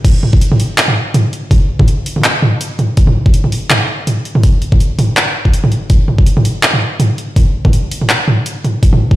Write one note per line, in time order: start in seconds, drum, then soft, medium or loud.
0.05 kick loud
0.05 open hi-hat medium
0.05 crash medium
0.23 mid tom medium
0.33 kick loud
0.41 closed hi-hat medium
0.52 mid tom medium
0.60 open hi-hat medium
0.78 clap loud
0.78 closed hi-hat medium
0.88 mid tom medium
1.14 closed hi-hat medium
1.14 mid tom medium
1.33 closed hi-hat soft
1.51 kick loud
1.51 mid tom medium
1.51 open hi-hat medium
1.79 kick loud
1.79 mid tom medium
1.88 closed hi-hat medium
2.06 open hi-hat medium
2.16 mid tom medium
2.18 mid tom soft
2.22 clap loud
2.22 closed hi-hat medium
2.22 mid tom soft
2.24 mid tom soft
2.28 mid tom soft
2.30 mid tom soft
2.42 mid tom medium
2.61 closed hi-hat medium
2.79 closed hi-hat soft
2.79 mid tom medium
2.97 kick loud
2.97 open hi-hat medium
3.07 mid tom medium
3.26 kick loud
3.34 closed hi-hat medium
3.44 mid tom medium
3.52 open hi-hat medium
3.70 clap loud
3.70 closed hi-hat medium
3.70 mid tom medium
4.07 closed hi-hat medium
4.07 mid tom soft
4.25 closed hi-hat soft
4.35 mid tom medium
4.43 kick loud
4.43 open hi-hat medium
4.62 closed hi-hat soft
4.72 kick loud
4.72 mid tom medium
4.80 closed hi-hat medium
4.99 mid tom medium
4.99 open hi-hat medium
5.17 clap loud
5.17 closed hi-hat medium
5.45 kick medium
5.54 closed hi-hat medium
5.64 mid tom medium
5.72 closed hi-hat soft
5.90 kick loud
5.90 open hi-hat medium
6.08 mid tom medium
6.18 kick loud
6.26 closed hi-hat medium
6.37 mid tom medium
6.45 open hi-hat medium
6.63 clap loud
6.63 closed hi-hat medium
6.74 mid tom soft
7.00 closed hi-hat medium
7.00 mid tom medium
7.18 closed hi-hat soft
7.36 kick loud
7.36 mid tom medium
7.36 open hi-hat medium
7.65 kick loud
7.65 mid tom medium
7.73 closed hi-hat medium
7.91 open hi-hat medium
8.02 mid tom medium
8.10 clap loud
8.10 closed hi-hat medium
8.28 mid tom medium
8.46 closed hi-hat medium
8.65 closed hi-hat soft
8.65 mid tom medium
8.83 kick loud
8.83 open hi-hat medium
8.93 mid tom medium
9.11 kick loud